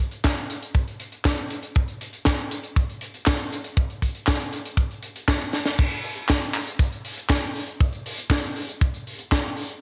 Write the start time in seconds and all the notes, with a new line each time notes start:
0.11 closed hi-hat
0.24 kick, snare, clap, closed hi-hat
0.38 closed hi-hat
0.50 closed hi-hat
0.62 closed hi-hat
0.75 kick, closed hi-hat
0.88 closed hi-hat
1.00 closed hi-hat
1.12 closed hi-hat
1.25 kick, snare, clap, closed hi-hat
1.38 closed hi-hat
1.51 closed hi-hat
1.63 closed hi-hat
1.75 kick, closed hi-hat
1.88 closed hi-hat
2.01 closed hi-hat
2.13 closed hi-hat
2.25 kick, snare, clap, closed hi-hat
2.38 closed hi-hat
2.51 closed hi-hat
2.63 closed hi-hat
2.76 kick, closed hi-hat
2.89 closed hi-hat
3.01 closed hi-hat
3.14 closed hi-hat
3.26 kick, snare, clap, closed hi-hat
3.40 closed hi-hat
3.52 closed hi-hat
3.64 closed hi-hat
3.77 kick, closed hi-hat
3.90 closed hi-hat
4.02 kick, closed hi-hat
4.15 closed hi-hat
4.27 kick, snare, clap, closed hi-hat
4.40 closed hi-hat
4.53 closed hi-hat
4.66 closed hi-hat
4.77 kick, closed hi-hat
4.91 closed hi-hat
5.03 closed hi-hat
5.16 closed hi-hat
5.28 kick, snare, clap, closed hi-hat
5.42 closed hi-hat
5.53 snare, closed hi-hat
5.65 snare, closed hi-hat
5.79 kick, closed hi-hat, crash
5.91 closed hi-hat
6.04 open hi-hat
6.16 closed hi-hat
6.29 kick, snare, clap, closed hi-hat
6.42 closed hi-hat
6.54 clap, open hi-hat
6.67 closed hi-hat
6.79 kick, closed hi-hat
6.92 closed hi-hat
7.05 open hi-hat
7.17 closed hi-hat
7.29 kick, snare, clap, closed hi-hat
7.43 closed hi-hat
7.55 open hi-hat
7.68 closed hi-hat
7.80 kick, closed hi-hat
7.93 closed hi-hat
8.06 open hi-hat
8.18 closed hi-hat
8.30 kick, snare, clap, closed hi-hat
8.44 closed hi-hat
8.56 open hi-hat
8.69 closed hi-hat
8.81 kick, closed hi-hat
8.94 closed hi-hat
9.07 open hi-hat
9.19 closed hi-hat
9.32 kick, snare, clap, closed hi-hat
9.44 closed hi-hat
9.57 open hi-hat
9.69 closed hi-hat